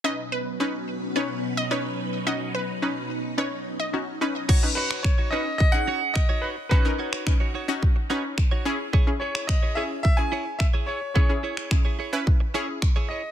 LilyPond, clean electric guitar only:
\new Staff \with { instrumentName = "Clean electric guitar" } { \time 4/4 \key b \major \tempo 4 = 108 r1 | r1 | <dis' fis' cis''>16 r16 <dis' fis' cis''>16 <dis' fis' cis''>16 r16 <dis' fis' cis''>16 <dis' fis' cis''>16 r8. <dis' fis' cis''>16 r8 <dis' fis' cis''>16 <dis' fis' cis''>16 r16 | <dis' fis' cis''>16 r16 <dis' fis' cis''>16 <dis' fis' cis''>16 r16 <dis' fis' cis''>16 <dis' fis' cis''>16 r8. <dis' fis' cis''>16 r8 <dis' fis' cis''>16 <e' gis' cis''>16 r16 |
<e' gis' cis''>16 r16 <e' gis' cis''>16 <e' gis' cis''>16 r16 <e' gis' cis''>16 <e' gis' cis''>16 r8. <e' gis' cis''>16 r8 <e' gis' cis''>16 <e' gis' cis''>16 r16 | <e' gis' cis''>16 r16 <e' gis' cis''>16 <e' gis' cis''>16 r16 <e' gis' cis''>16 <e' gis' cis''>16 r8. <e' gis' cis''>16 r8 <e' gis' cis''>16 <e' gis' cis''>16 r16 | }